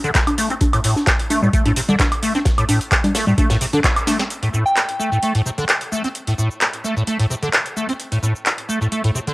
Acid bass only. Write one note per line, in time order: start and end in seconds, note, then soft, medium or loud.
0.04 0.10 D3 loud
0.38 0.48 A3 medium
0.50 0.54 C4 medium
0.73 0.79 A2 medium
0.84 0.94 A2 medium
1.30 1.40 A3 medium
1.43 1.48 A2 medium
1.53 1.63 A3 medium
1.66 1.72 A2 loud
1.76 1.80 C3 medium
1.89 1.95 D3 loud
2.23 2.33 A3 medium
2.35 2.38 C4 medium
2.58 2.64 A2 medium
2.69 2.79 A2 medium
3.15 3.25 A3 medium
3.27 3.33 A2 medium
3.38 3.48 A3 medium
3.50 3.56 A2 loud
3.61 3.65 C3 medium
3.73 3.79 D3 loud
4.07 4.17 A3 medium
4.19 4.23 C4 medium
4.43 4.49 A2 medium
4.54 4.64 A2 medium
5.00 5.10 A3 medium
5.12 5.18 A2 medium
5.23 5.33 A3 medium
5.35 5.41 A2 loud
5.46 5.50 C3 medium
5.58 5.64 D3 loud
5.92 6.02 A3 medium
6.04 6.08 C4 medium
6.27 6.33 A2 medium
6.38 6.48 A2 medium
6.84 6.94 A3 medium
6.96 7.02 A2 medium
7.07 7.17 A3 medium
7.19 7.25 A2 loud
7.30 7.34 C3 medium
7.43 7.49 D3 loud
7.77 7.87 A3 medium
7.89 7.92 C4 medium
8.12 8.18 A2 medium
8.23 8.33 A2 medium
8.69 8.79 A3 medium
8.81 8.87 A2 medium
8.92 9.02 A3 medium
9.04 9.10 A2 loud
9.15 9.19 C3 medium
9.27 9.33 D3 loud